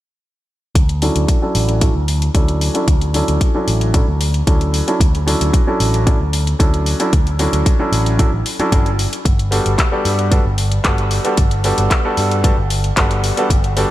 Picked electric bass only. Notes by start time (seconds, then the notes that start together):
0.75 D2
1.16 D2
1.55 A1
1.95 D2
2.34 D2
2.88 D2
3.28 D2
3.68 A1
4.08 D2
4.47 D2
5.00 D2
5.41 D2
5.80 A1
6.20 D2
6.60 D2
7.13 D2
7.53 D2
7.92 A1
8.33 A1
8.59 muted picked electric bass stroke
8.72 G1
9.25 G1
9.66 G1
10.05 G2
10.45 G1
10.85 G1
11.38 G1
11.78 G1
12.18 G2
12.58 G1
12.97 G1
13.50 G1